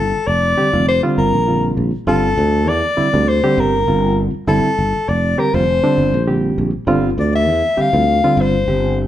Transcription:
Already playing: G1 A4
0.27 F1 D5
0.57 D3 G3 C4 G4
0.73 F1 D3 G3 C4 F4
0.88 C4 G4 C5
1.03 D3 G3 C4 F4
1.18 G1 A#4
1.34 A#1
1.48 D3 G3 C4 F4
1.77 A#1
2.07 G1 D3 G3 C4 F4 A4
2.38 D2 C4 D4
2.67 E2 D5
2.97 D3 G3 C4 E4, muted fretless electric bass stroke
3.13 D2 D3 G3 C4 D4
3.28 C4 G4 C5
3.44 D3 G3 C4 G4
3.58 G1 A#4
3.88 G1 D3 G3 C4 F4
4.34 muted fretless electric bass stroke
4.47 G1 D3 G3 C4 E4 A4
4.78 G1 C4 D4
5.09 F1 D5
5.38 D3 G3 C4 G4 A#4
5.54 F1 D3 G3 C4 F4 C5
5.68 C4 F4
5.83 D3 G3 C4 D4
5.98 G1
6.14 A#1
6.27 D3 G3 C4 G4
6.58 A#1
6.87 G1 D3 G3 C4 F4
7.18 D2 C4 F4 D5
7.35 E5
7.48 E2
7.77 D3 G3 C4 G4 F5, muted fretless electric bass stroke
7.93 D2 D3 G3 C4 F4
8.24 D3 G3 C4 F4
8.37 G1 C5
8.68 G1 D3 G3 C4 G4

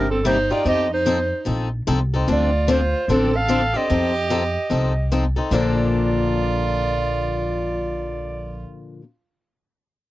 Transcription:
Already playing: G1
0.11 C4 A4
0.25 C3 G3 A#3 D#4 G4 C5
0.50 A#3 D#4 F4 G4 D5
0.65 F2 F3 C4 D#4 G4 A4 D#5
0.93 D#4 C5
1.06 F3 C4 D#4 A4
1.45 A#1 F3 C4 D#4 A4
1.87 C2 F3 C4 D#4 A4
2.14 C4 D#4 A4
2.28 D2 D3 F3 C4 D4 F4 A4
2.32 D5
2.68 D3 F3 C4 D4 F4 A4 C5
3.08 A1 D3 F3 C4 D4 A4
3.33 A4 F5
3.48 D3 F3 C4 D4 A4
3.73 C4 D4 G4 A4 D#5
3.90 F2 F3 C4 D#4 A4
4.30 F3 C4 D#4 A4
4.70 C2 F3 C4 D#4 A4
5.12 F3 C4 D#4 A4
5.36 C4 D#4 A4
5.50 A#1 A#2 D3 F3 A#3 D4 F4 D5
5.54 A4

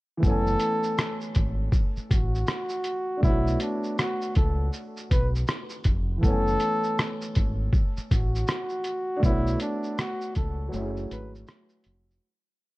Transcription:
0.17 E3 A3
0.23 F#1 B3 C#4 A4, kick, shaker
0.30 G#5
0.47 shaker
0.60 closed hi-hat, shaker
0.83 shaker
0.98 cross-stick, shaker
1.21 shaker
1.35 G#1, kick, closed hi-hat, shaker
1.72 kick, shaker
1.97 muted fingered electric bass stroke, shaker
2.11 A1 F#4, kick, closed hi-hat, shaker
2.35 shaker
2.47 cross-stick, shaker
2.69 shaker
2.84 closed hi-hat, shaker
3.17 A3 D4
3.23 B1 B3 E4 C#5, kick, shaker
3.29 F#4
3.47 shaker
3.60 D4, closed hi-hat, shaker
3.83 shaker
3.98 F#4, cross-stick, shaker
4.22 shaker
4.35 C#2 A4, kick, closed hi-hat, shaker
4.73 shaker
4.97 shaker
5.11 B1 B4, kick, closed hi-hat, shaker
5.35 shaker
5.47 cross-stick, shaker
5.69 shaker
5.84 F1, kick, closed hi-hat, shaker
6.18 E3 A3
6.23 F#1 B3 A4, kick, shaker
6.27 C#4 G#5
6.47 shaker
6.60 closed hi-hat, shaker
6.84 shaker
6.99 cross-stick, shaker
7.22 shaker
7.35 G#1, kick, closed hi-hat, shaker
7.73 kick, shaker
7.97 muted fingered electric bass stroke, shaker
8.11 A1 F#4, kick, closed hi-hat, shaker
8.35 shaker
8.47 cross-stick, shaker
8.69 shaker
8.84 closed hi-hat, shaker
9.17 A3 D4
9.23 B1 B3 E4 C#5, kick, shaker
9.30 F#4
9.47 shaker
9.60 D4, closed hi-hat, shaker
9.83 shaker
9.98 F#4, cross-stick, shaker
10.21 shaker
10.35 C#2 A4, kick, closed hi-hat, shaker
10.69 F#3 A3
10.73 F#1 C#4, shaker
10.78 E4 G#4
10.97 shaker
11.11 G#1 B4, closed hi-hat, shaker
11.35 shaker
11.47 cross-stick, shaker
11.69 shaker
11.84 F1, closed hi-hat, shaker
12.11 shaker

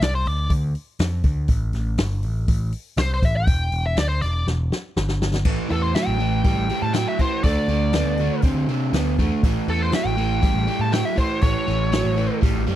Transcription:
0.01 C2 D5, snare, open hi-hat
0.15 C5
0.26 D2 D5, open hi-hat
0.50 D2, kick, open hi-hat
0.75 open hi-hat
0.99 F2, snare, open hi-hat
1.24 D2, kick, open hi-hat
1.48 A1, kick, open hi-hat
1.73 A1, snare, open hi-hat
1.98 G1, snare, open hi-hat
2.23 A1, open hi-hat
2.48 A1, kick, open hi-hat
2.72 open hi-hat
2.97 C2 C5, snare, open hi-hat
3.14 C5
3.22 A1 E5, kick, open hi-hat
3.36 G5
3.47 E1, kick, open hi-hat
3.72 E1, open hi-hat
3.86 E5
3.97 D2 D5, snare, open hi-hat
4.09 C5
4.21 E1 D5, snare, open hi-hat
4.47 E1, snare
4.72 snare
4.97 G1, snare
5.08 snare
5.22 snare
5.34 snare
5.45 A1 A2 E3, kick, crash
5.69 E2 A2 E3 A4, open hi-hat
5.82 C5
5.95 A2 F#3 E5, snare, open hi-hat
6.06 A1 G5
6.19 A2 E3, open hi-hat
6.44 A1 A2 G3, kick, open hi-hat
6.58 A1
6.69 A2 G3, open hi-hat
6.82 A2 A5
6.93 A2 F#3 G5, snare, open hi-hat
7.08 E5
7.19 A2 E3 C5, kick, open hi-hat
7.43 D2 D3 A3 D5, kick, open hi-hat
7.68 D2 D3 A3, open hi-hat
7.93 D3 B3, snare, open hi-hat
8.05 D2
8.17 D3 A3, open hi-hat
8.42 D2 D3 C4, kick, open hi-hat
8.55 D2
8.67 C3 D3 C4, open hi-hat
8.93 D2 D3 B3, snare, open hi-hat
9.18 E2 D3 A3, kick, open hi-hat
9.43 A1 A2 E3, kick, open hi-hat
9.68 E2 A2 E3 A4, open hi-hat
9.82 C5
9.92 A2 F#3 E5, snare, open hi-hat
10.05 A1 G5
10.17 A2 E3, open hi-hat
10.42 A1 A2 G3, kick, open hi-hat
10.55 A1
10.67 A2 G3, open hi-hat
10.80 A2 A5
10.92 A2 F#3 G5, snare, open hi-hat
11.05 E5
11.16 A2 E3 C5, kick, open hi-hat
11.42 A1 A2 E3 C#5, kick, open hi-hat
11.67 A1 A2 E3, snare, open hi-hat
11.92 A2 F#3, snare, open hi-hat
12.05 A1
12.16 A2 E3, open hi-hat
12.41 A1 A2 G3, kick, open hi-hat
12.55 A1
12.67 F#2 A2 G3, open hi-hat

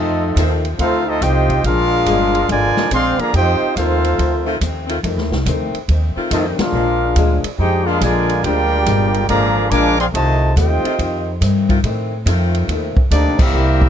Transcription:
Already playing: F2 D#3 A3 C4 D#4 F4 A4 D#5
0.36 D#2 F2 D#3 F3 A3 C4 D#4 A4, kick, hi-hat pedal, ride
0.65 ride
0.78 D2 F2 D#3 A3 C4 D#4 F4 A4 C5 F5, kick, ride
1.07 A3 C4 D#4 F4 A4 D#5
1.21 C2 F2 D#3 A3 C4 D#4 F4 G4 C5 D#5 G5, kick, hi-hat pedal, ride
1.50 kick, ride
1.64 A#1 A#2 F3 G#3 D4 F4 G#4 A#4 F5, kick, ride
2.06 G1 A#2 F3 G#3 A#3 D4 G#4, kick, hi-hat pedal, ride
2.35 ride
2.49 G#1 A#2 D3 F3 G#3 D4 F4 A#4 D5 G#5, kick, ride
2.77 muted upright bass stroke, snare
2.91 A#1 A#2 F3 G#3 C4 D4 G#4 D5 F5 C6, kick, hi-hat pedal, ride
3.19 D3 F3 A#3 G#4 D5 F5 A#5, muted upright bass stroke, ride
3.33 F2 D#3 A3 C4 D#4 F4 G4 C5 D#5 G5, kick, ride
3.61 muted upright bass stroke
3.76 D#2 F2 D#3 A3 C4 D#4 F4 A4 C5 F5, kick, hi-hat pedal, ride
4.04 ride
4.19 D2 F2 D#3 A3 C4, kick, ride
4.46 D#3 A3 C4 F4
4.61 D#2 F2 D#3 A3 C4, kick, hi-hat pedal, ride
4.87 D#3 A3 C4 F4, ride
5.03 F2 D#3 A3 C4, kick, ride
5.16 D#2, snare
5.31 C2, snare
5.46 D2 F2 D#3 A3 C4, kick, hi-hat pedal, ride
5.74 muted upright bass stroke, ride
5.88 D#2 F2 D#3 A3 C4, kick, ride
6.16 D#3 A3 C4 F4, muted upright bass stroke
6.31 F2 D#3 A3 C4 D#4 F4 A4 D#5, kick, hi-hat pedal, ride
6.58 G#3 D4 F4 G#4 A#4 F5, muted upright bass stroke, snare, ride
6.72 A#1 A#2 D3 F3 G#3 A#3 F4
6.77 D4
7.16 D2 A#2 F3 G#3 D4, kick, hi-hat pedal, ride
7.44 muted upright bass stroke, ride
7.57 F2 A#2 F3 G#3 D#4 G4 G#4 C5 G5, kick
7.61 D4
7.85 D3 G#3 A#3 D4 F4 G#4 A#4 F5
8.00 A#1 A#2 D3 F3 G#3 D4 F4 A#4 D5 G#5, kick, hi-hat pedal, ride
8.29 ride
8.43 D2 A#2 D3 F3 G#3 A#3 D4 F4 G4 A#4 D5 G5, kick, ride
8.47 D4
8.86 G1 A#2 F3 G#3 D4, kick, hi-hat pedal, ride
9.14 ride
9.27 G#1 A#2 D3 F3 G#3 A#3 D4 G#4 D5 F5 A#5, kick, ride
9.70 A#1 A#2 D3 F3 G#3 A#3 D4 A#4 F5 G#5 D6, kick, hi-hat pedal, ride
9.99 C4 G#4 D5 F5 C6, ride
10.12 C2 F2 C3 D#3 A3 C4 F4 C5 D#5 A5, kick, ride
10.55 D#2 F2 D#3 A3 C4 D#4 F4 G4 C5 D#5 G5, kick, hi-hat pedal, ride
10.84 D#3 A3 C4 F4, muted upright bass stroke, ride
10.99 F2 D#3 A3 C4, kick, ride
11.41 F2 G2 D#3 A3 C4, kick, hi-hat pedal, ride
11.68 D#3 A3 C4 F4, kick, ride
11.83 F2 A2 D#3 A3 C4, kick, ride
12.26 F2 D#3 A3 C4 F4, kick, hi-hat pedal, ride
12.55 ride
12.68 D#2 F2 D#3 A3 C4, kick, ride
12.96 muted upright bass stroke, kick
13.11 D2 F2 D#3 A3 A#3 C4 D4 D#4 G4 D5, kick, hi-hat pedal, ride
13.24 C2
13.39 A1 G3 A#3 C4 E4 G4 A#4 E5, kick, crash
13.53 C2 C3 G3 A#3 E4
13.82 kick

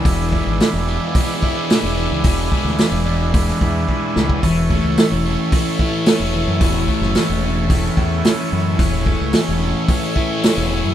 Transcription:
Already playing: E3 G#3 D4 E4 G#4 B4
0.05 E1 E2, kick, open hi-hat
0.33 G#3, kick
0.47 G#1
0.60 E3, snare, open hi-hat
0.73 E1
0.88 D4
1.15 G#3, kick, open hi-hat
1.43 E4, kick
1.70 D4, snare, open hi-hat
1.83 E1
1.97 E3
2.11 C#2
2.24 E1 E2, kick, open hi-hat
2.52 G#3, kick
2.65 D2, snare
2.78 E3, snare, open hi-hat
2.92 E1
3.05 D4
3.33 G#3, kick, open hi-hat
3.49 snare
3.61 E2 E4, kick
3.88 D4, kick
4.15 C#2 E3, snare
4.30 kick
4.43 E1 E3 C#4 A4 C#5, kick, open hi-hat
4.70 A3, kick
4.84 C#2
4.97 E3, snare, open hi-hat
5.12 E1
5.26 C#4
5.52 A3, kick, open hi-hat
5.79 E4, kick
6.06 C#4, snare, open hi-hat
6.20 E1
6.34 E3
6.47 F#2
6.61 E1 E3, kick, open hi-hat
6.88 A3, kick
7.01 F#1, snare
7.15 E3, snare, open hi-hat
7.30 E1
7.44 C#4
7.70 A3, kick, open hi-hat
7.97 E2 E4, kick
8.24 C#4, snare, open hi-hat
8.51 F#2 E3
8.78 E1 E3, kick, open hi-hat
8.83 G#4
9.06 A3, kick
9.21 C#2
9.33 E3, snare, open hi-hat
9.49 E1
9.61 C#4
9.88 A3, kick, open hi-hat
10.15 E4, kick
10.43 C#4, snare, open hi-hat
10.57 E1
10.72 E3
10.85 F#2

